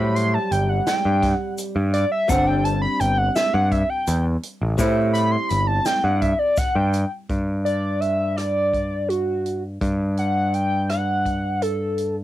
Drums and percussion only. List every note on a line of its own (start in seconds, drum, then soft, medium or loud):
0.16 closed hi-hat medium
0.52 closed hi-hat medium
0.52 shaker soft
0.87 snare loud
0.87 closed hi-hat medium
0.87 shaker soft
1.23 kick medium
1.23 snare soft
1.23 closed hi-hat medium
1.58 closed hi-hat medium
1.58 shaker soft
1.94 closed hi-hat medium
2.29 kick loud
2.29 closed hi-hat medium
2.29 shaker medium
2.65 closed hi-hat medium
3.00 closed hi-hat medium
3.00 shaker soft
3.36 snare loud
3.36 closed hi-hat medium
3.36 shaker soft
3.72 kick medium
3.72 closed hi-hat medium
4.07 closed hi-hat medium
4.07 shaker medium
4.43 closed hi-hat medium
4.79 kick loud
4.79 closed hi-hat medium
4.79 shaker medium
5.14 closed hi-hat medium
5.14 shaker soft
5.50 closed hi-hat medium
5.50 shaker soft
5.85 snare loud
5.85 closed hi-hat medium
5.85 shaker medium
6.22 kick medium
6.22 closed hi-hat medium
6.57 kick loud
6.57 snare soft
6.57 closed hi-hat medium
6.57 shaker soft
6.93 closed hi-hat medium
6.93 shaker soft
7.29 kick medium
7.29 closed hi-hat medium
7.66 closed hi-hat soft
8.02 closed hi-hat soft
8.38 cross-stick medium
8.38 closed hi-hat medium
8.73 kick soft
8.73 closed hi-hat soft
9.10 closed hi-hat medium
9.46 closed hi-hat soft
9.81 kick medium
9.81 closed hi-hat medium
10.17 closed hi-hat soft
10.54 closed hi-hat soft
10.90 cross-stick medium
10.90 closed hi-hat medium
11.26 kick soft
11.26 closed hi-hat soft
11.62 closed hi-hat medium
11.98 closed hi-hat soft